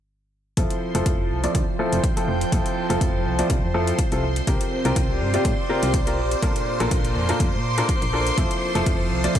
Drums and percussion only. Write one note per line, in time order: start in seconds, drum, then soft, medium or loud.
0.57 kick loud
0.57 closed hi-hat medium
0.70 closed hi-hat soft
0.95 closed hi-hat medium
1.06 kick loud
1.06 closed hi-hat medium
1.44 closed hi-hat medium
1.55 kick loud
1.55 closed hi-hat medium
1.93 closed hi-hat medium
2.04 kick loud
2.04 closed hi-hat medium
2.17 closed hi-hat soft
2.41 closed hi-hat soft
2.52 kick loud
2.52 closed hi-hat medium
2.66 closed hi-hat soft
2.90 closed hi-hat medium
3.01 kick loud
3.01 closed hi-hat medium
3.39 closed hi-hat medium
3.50 kick loud
3.50 closed hi-hat medium
3.87 closed hi-hat medium
3.99 kick loud
3.99 closed hi-hat medium
4.12 closed hi-hat soft
4.36 closed hi-hat soft
4.47 kick loud
4.47 closed hi-hat medium
4.61 closed hi-hat soft
4.85 closed hi-hat medium
4.96 kick loud
4.96 closed hi-hat medium
5.34 closed hi-hat soft
5.45 kick loud
5.45 closed hi-hat medium
5.83 closed hi-hat soft
5.94 kick loud
5.94 closed hi-hat medium
6.07 closed hi-hat soft
6.31 closed hi-hat soft
6.43 kick loud
6.43 closed hi-hat medium
6.56 closed hi-hat soft
6.80 closed hi-hat soft
6.91 kick loud
6.91 closed hi-hat medium
7.05 closed hi-hat soft
7.29 closed hi-hat soft
7.40 kick loud
7.40 closed hi-hat medium
7.78 closed hi-hat soft
7.89 kick loud
7.89 closed hi-hat medium
8.02 closed hi-hat soft
8.27 closed hi-hat soft
8.38 kick loud
8.38 closed hi-hat medium
8.51 closed hi-hat soft
8.75 closed hi-hat soft
8.86 kick loud
8.86 closed hi-hat medium
9.24 closed hi-hat soft
9.35 kick loud
9.35 closed hi-hat medium